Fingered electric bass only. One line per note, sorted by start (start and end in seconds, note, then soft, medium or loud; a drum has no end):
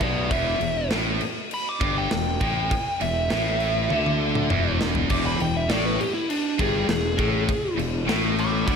0.01 0.29 B1 medium
0.31 0.59 E1 medium
0.60 0.89 E1 medium
0.91 1.19 A1 medium
1.21 muted fingered electric bass stroke soft
1.81 2.09 G1 medium
2.12 2.39 E1 medium
2.41 2.69 A1 medium
3.02 3.29 E1 medium
3.31 3.87 A1 medium
3.91 4.47 D2 medium
4.51 5.06 E1 medium
5.11 5.38 E1 medium
5.40 5.68 E1 medium
5.69 5.97 A1 medium
6.00 muted fingered electric bass stroke soft
6.60 6.87 G1 medium
6.88 7.16 E1 medium
7.18 7.46 A1 medium
7.77 8.05 E1 medium
8.07 8.63 A1 medium
8.68 8.76 D2 medium